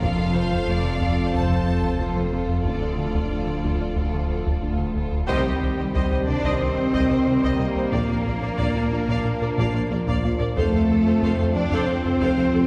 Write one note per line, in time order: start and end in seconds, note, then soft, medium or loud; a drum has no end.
0.00 0.60 F1 medium
0.00 2.67 F1 medium
0.00 0.13 F2 medium
0.00 0.61 F2 medium
0.00 2.65 F3 medium
0.00 0.13 F3 medium
0.00 2.66 C4 medium
0.00 2.62 F4 medium
0.00 2.65 F4 medium
0.00 0.35 F4 medium
0.00 4.93 A4 medium
0.00 5.30 A4 medium
0.00 0.35 A4 medium
0.00 1.31 F5 medium
0.00 taiko medium
0.19 0.29 F2 medium
0.19 0.29 F4 medium
0.35 0.45 F3 medium
0.35 0.45 C4 soft
0.35 0.68 F4 soft
0.35 0.68 A4 soft
0.35 0.68 C5 medium
0.51 0.62 F2 medium
0.51 0.62 F3 medium
0.51 taiko medium
0.68 1.26 F1 medium
0.68 1.26 F2 medium
0.68 0.78 F2 medium
0.68 0.79 A3 medium
0.68 1.00 F4 medium
0.68 1.01 A4 medium
0.68 1.34 D5 medium
0.85 0.95 F3 medium
0.85 0.95 C4 medium
1.01 1.11 F2 medium
1.01 1.11 F3 medium
1.01 1.34 F4 soft
1.01 1.34 A4 soft
1.01 taiko medium
1.18 1.28 F2 soft
1.18 1.27 F4 medium
1.34 1.92 F1 medium
1.34 1.92 F2 medium
1.34 1.44 F2 medium
1.34 1.44 F3 medium
1.34 1.67 F4 soft
1.34 1.67 A4 soft
1.34 2.00 C5 medium
1.34 2.00 A5 medium
1.34 taiko medium
1.50 1.60 F3 soft
1.50 1.61 C4 medium
1.67 1.77 F2 medium
1.67 1.77 A3 soft
1.67 2.00 F4 soft
1.67 2.00 A4 soft
1.83 1.93 F2 medium
1.83 1.94 F3 medium
1.83 taiko medium
1.99 2.58 F1 medium
1.99 2.58 F2 medium
1.99 2.09 F2 medium
1.99 2.33 A#3 soft
1.99 2.10 F4 medium
1.99 2.33 F4 soft
1.99 2.33 A4 soft
1.99 2.66 C5 medium
2.16 2.26 F3 soft
2.16 2.26 C4 medium
2.33 2.43 F2 medium
2.33 2.43 F3 medium
2.33 2.65 F4 soft
2.33 2.66 A4 soft
2.33 2.65 A4 soft
2.49 2.59 F2 medium
2.65 5.30 D1 medium
2.65 3.24 D2 medium
2.65 2.75 D2 medium
2.65 3.24 D2 medium
2.65 2.76 D3 medium
2.65 5.26 F3 medium
2.65 5.30 D4 medium
2.65 4.94 F4 soft
2.65 4.93 F4 medium
2.65 5.26 F4 medium
2.65 2.98 F4 soft
2.65 2.97 A4 soft
2.65 4.59 D5 medium
2.65 taiko medium
2.82 2.92 D2 medium
2.82 2.92 D4 medium
2.98 3.08 D3 medium
2.98 3.08 A3 soft
2.98 3.30 F4 soft
2.98 3.30 A4 soft
3.15 3.25 D2 medium
3.15 3.25 D3 medium
3.15 taiko medium
3.31 3.41 D2 medium
3.31 3.90 D2 medium
3.31 3.90 D2 soft
3.31 3.41 F3 soft
3.31 3.63 F4 soft
3.31 3.64 A4 soft
3.47 3.57 D3 medium
3.47 3.58 A3 soft
3.64 3.74 D2 medium
3.64 3.74 D3 medium
3.64 3.96 F4 soft
3.64 3.96 A4 soft
3.64 taiko medium
3.80 3.90 D2 soft
3.80 3.91 D4 soft
3.96 4.06 D2 medium
3.96 4.56 D2 soft
3.96 4.07 D3 medium
3.96 4.29 F4 soft
3.96 4.29 A4 soft
3.96 taiko medium
4.14 4.24 D3 medium
4.14 4.24 A3 medium
4.29 4.40 D2 medium
4.29 4.40 F3 soft
4.29 4.62 F4 soft
4.29 4.62 A4 soft
4.46 4.57 D2 medium
4.46 4.57 D3 medium
4.46 taiko medium
4.63 4.73 D2 medium
4.63 5.22 D2 medium
4.63 5.22 D2 soft
4.63 4.73 D4 soft
4.63 4.95 F4 soft
4.63 4.95 A4 soft
4.78 4.89 D3 soft
4.78 4.89 A3 medium
4.96 5.06 D2 medium
4.96 5.06 D3 medium
4.96 5.29 F4 soft
4.96 5.29 A4 soft
5.12 5.23 D2 medium
5.28 5.45 C2 medium
5.28 5.44 C2 medium
5.28 5.39 C2 loud
5.28 5.38 C3 medium
5.28 7.88 D#3 medium
5.28 7.89 D#3 medium
5.28 6.24 G3 medium
5.28 7.89 G3 medium
5.28 6.25 G3 medium
5.28 7.88 C4 medium
5.28 6.24 G4 medium
5.28 7.89 G4 medium
5.28 7.88 C5 medium
5.28 5.44 C5 medium
5.28 5.44 D#5 medium
5.28 taiko medium
5.45 5.56 C2 medium
5.45 5.52 C2 soft
5.45 5.55 C4 medium
5.45 5.52 C5 soft
5.45 5.52 D#5 soft
5.45 5.53 D#5 soft
5.62 5.69 C2 soft
5.62 5.73 C2 medium
5.62 5.72 D#3 soft
5.62 5.69 C5 soft
5.78 5.85 C2 soft
5.78 5.89 C2 medium
5.78 5.89 D#3 medium
5.78 5.85 C5 soft
5.78 5.85 D#5 soft
5.94 6.02 C2 medium
5.94 6.06 C2 medium
5.94 6.04 C3 medium
5.94 6.10 C5 medium
5.94 6.10 D#5 medium
5.94 taiko medium
6.11 6.18 C2 soft
6.11 6.22 C2 medium
6.11 6.21 D#3 medium
6.11 6.18 C5 soft
6.11 6.18 D#5 soft
6.27 6.34 C2 soft
6.27 6.39 C3 medium
6.27 6.38 G3 medium
6.27 6.61 D4 medium
6.27 6.35 C5 soft
6.27 6.61 D5 medium
6.44 6.51 C2 medium
6.44 6.55 C2 medium
6.44 6.54 C3 medium
6.44 6.60 C5 medium
6.44 6.60 D#5 medium
6.44 taiko medium
6.60 6.71 C2 medium
6.60 7.60 C4 medium
6.60 7.58 C5 medium
6.77 6.87 C2 soft
6.77 6.84 C2 soft
6.77 6.87 C4 medium
6.77 6.84 C5 soft
6.77 6.85 C5 soft
6.93 7.01 C2 medium
6.93 7.04 C2 medium
6.93 7.03 C3 medium
6.93 7.09 C5 medium
6.93 7.09 D#5 medium
6.93 7.10 D#5 medium
6.93 taiko medium
7.10 7.18 C2 soft
7.10 7.20 C3 medium
7.10 7.20 G3 medium
7.10 7.17 C5 soft
7.10 7.17 D#5 soft
7.10 7.18 D#5 soft
7.26 7.34 C2 soft
7.26 7.37 C3 medium
7.26 7.37 G3 medium
7.26 7.33 C5 soft
7.26 7.35 C5 soft
7.43 7.54 C2 medium
7.43 7.51 C2 medium
7.43 7.53 C3 medium
7.43 7.59 C5 medium
7.43 7.59 D#5 medium
7.43 taiko medium
7.59 7.67 C2 soft
7.59 7.70 C3 medium
7.59 7.70 G3 medium
7.59 10.20 A#3 medium
7.59 10.24 A#3 medium
7.59 10.24 A#4 medium
7.59 7.67 C5 soft
7.59 7.67 D#5 soft
7.59 7.67 D#5 medium
7.76 7.86 C2 medium
7.76 7.83 C2 soft
7.76 7.86 C4 medium
7.76 7.83 C5 medium
7.76 7.84 C5 medium
7.92 8.00 A#1 medium
7.92 8.02 A#2 medium
7.92 12.67 F3 medium
7.92 8.03 A#3 medium
7.92 10.53 D4 medium
7.92 10.57 D4 medium
7.92 12.67 F4 medium
7.92 10.57 A#4 medium
7.92 8.08 D5 medium
7.92 8.09 F5 medium
7.92 taiko medium
8.09 8.16 A#1 soft
8.09 8.19 A#2 medium
8.09 8.20 A#4 medium
8.09 8.16 D5 soft
8.09 8.17 F5 soft
8.25 8.32 A#1 soft
8.25 8.33 A#1 soft
8.25 8.36 A#2 medium
8.25 8.37 D4 medium
8.25 8.32 A#4 soft
8.25 8.33 D5 soft
8.25 8.34 D5 soft
8.42 8.49 A#1 soft
8.42 8.52 A#2 soft
8.42 8.52 D4 medium
8.42 8.49 D5 medium
8.42 8.51 F5 soft
8.58 8.66 A#1 medium
8.58 8.69 A#2 medium
8.58 8.70 A#3 medium
8.58 8.74 D5 medium
8.58 8.75 F5 medium
8.58 taiko medium
8.75 8.82 A#1 soft
8.75 8.85 A#2 medium
8.75 8.86 D4 medium
8.75 8.83 D5 soft
8.75 8.83 F5 soft
8.92 8.99 A#1 soft
8.92 9.02 A#3 medium
8.92 9.02 F4 medium
8.92 8.99 A#4 soft
8.92 8.99 D5 soft
8.92 9.00 D5 soft
9.08 9.15 A#1 medium
9.08 9.18 A#2 medium
9.08 9.19 A#3 medium
9.08 9.24 D5 medium
9.08 9.25 F5 medium
9.08 taiko medium
9.25 9.35 A#2 medium
9.41 9.48 A#1 medium
9.41 9.52 A#2 medium
9.41 9.48 A#4 soft
9.41 9.52 A#4 medium
9.41 9.48 D5 medium
9.41 9.49 D5 medium
9.58 9.65 A#1 medium
9.58 9.68 A#2 medium
9.58 9.68 A#3 medium
9.58 9.73 D5 medium
9.58 9.74 F5 medium
9.58 taiko medium
9.74 9.82 A#1 soft
9.74 9.84 A#3 medium
9.74 9.85 F4 medium
9.74 9.81 D5 soft
9.74 9.81 F5 medium
9.91 9.98 A#1 medium
9.91 10.01 A#3 medium
9.91 10.01 F4 medium
9.91 9.98 A#4 soft
9.91 9.98 D5 soft
10.07 10.15 A#1 medium
10.07 10.17 A#2 medium
10.07 10.18 A#3 medium
10.07 10.23 D5 medium
10.07 10.23 F5 medium
10.07 taiko medium
10.24 10.31 A#1 soft
10.24 10.31 A#1 medium
10.24 10.34 A#3 medium
10.24 10.34 F4 medium
10.24 10.31 D5 soft
10.24 10.32 F5 medium
10.40 10.47 A#1 soft
10.40 10.51 A#2 medium
10.40 10.47 A#4 medium
10.40 10.51 A#4 medium
10.40 10.47 D5 medium
10.40 10.48 D5 medium
10.56 10.64 F1 medium
10.56 10.67 F2 medium
10.56 10.67 F3 medium
10.56 11.52 A3 medium
10.56 12.67 C4 medium
10.56 11.51 A4 medium
10.56 10.72 A4 medium
10.56 10.72 C5 medium
10.56 12.67 C5 medium
10.56 10.73 F5 medium
10.56 taiko medium
10.73 10.80 F1 soft
10.73 10.84 F2 medium
10.73 10.84 F4 medium
10.73 10.80 A4 soft
10.73 10.80 C5 soft
10.73 10.81 F5 medium
10.90 10.96 F1 soft
10.90 10.96 F1 medium
10.90 11.00 F2 medium
10.90 11.00 A3 soft
10.90 10.97 A4 soft
10.90 10.98 C5 medium
11.06 11.13 F1 medium
11.06 11.16 F2 medium
11.06 11.17 A3 medium
11.06 11.13 A4 soft
11.06 11.13 C5 soft
11.06 11.13 F5 soft
11.22 11.29 F1 medium
11.22 11.30 F1 medium
11.22 11.33 F2 medium
11.22 11.34 F3 medium
11.22 11.38 A4 medium
11.22 11.38 C5 medium
11.22 11.38 F5 medium
11.22 taiko medium
11.39 11.46 F1 medium
11.39 11.49 F2 medium
11.39 11.50 A3 medium
11.39 11.46 A4 soft
11.39 11.46 C5 soft
11.39 11.46 F5 soft
11.54 11.62 F1 soft
11.54 11.65 F3 medium
11.54 11.66 C4 medium
11.54 11.88 D4 medium
11.54 11.63 A4 medium
11.54 11.62 C5 soft
11.54 11.88 D5 medium
11.70 11.79 F1 medium
11.70 11.82 F2 medium
11.70 11.83 F3 medium
11.70 11.88 A4 medium
11.70 11.88 C5 medium
11.70 11.87 F5 medium
11.70 taiko medium
11.87 11.99 F2 medium
11.87 12.67 C4 medium
11.87 12.67 C5 medium
12.04 12.12 F1 medium
12.04 12.15 F2 medium
12.04 12.16 F4 medium
12.04 12.12 A4 medium
12.04 12.11 C5 medium
12.20 12.28 F1 medium
12.20 12.31 F2 medium
12.20 12.32 F3 medium
12.20 12.36 A4 medium
12.20 12.36 C5 medium
12.20 12.37 F5 medium
12.20 taiko medium
12.37 12.44 F1 soft
12.37 12.48 F3 medium
12.37 12.48 C4 medium
12.37 12.44 A4 medium
12.37 12.44 C5 medium
12.37 12.45 F5 medium
12.54 12.61 F1 medium
12.54 12.64 F3 medium
12.54 12.65 C4 medium
12.54 12.61 A4 medium
12.54 12.60 C5 medium